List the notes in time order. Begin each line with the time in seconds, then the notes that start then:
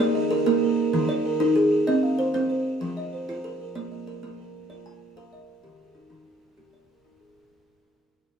Already playing: G#4
0.00 A#3 D5
0.15 D#5
0.31 A#4 D5
0.46 A#3 A#4
0.62 A#4
0.93 D#3 D#4
1.09 D5
1.25 A#4
1.40 D#4 A#4
1.56 G#4
1.72 G#4
1.87 C4 D#5
2.03 F5
2.19 C5 D#5
2.34 C4 C5
2.50 C5
2.81 F3 F4
2.97 D#5
3.13 C5
3.29 F4 C5
3.44 A#4
3.60 A#4
3.75 A#3 D5
3.92 D#5
4.07 A#4 D5
4.23 A#3 A#4
4.38 A#4
4.70 F4 A#4 D5
4.86 G#5
5.17 A#4 F5
5.33 D#5
5.48 D#5
5.63 D#3 G4
5.79 G#4
5.95 D#4 G4
6.10 D#3 D#4
6.26 D#4
6.57 A#3 D#4 G4
6.73 D5
6.89 A#4
7.04 D#4 A#4
7.20 G#4
7.36 G#4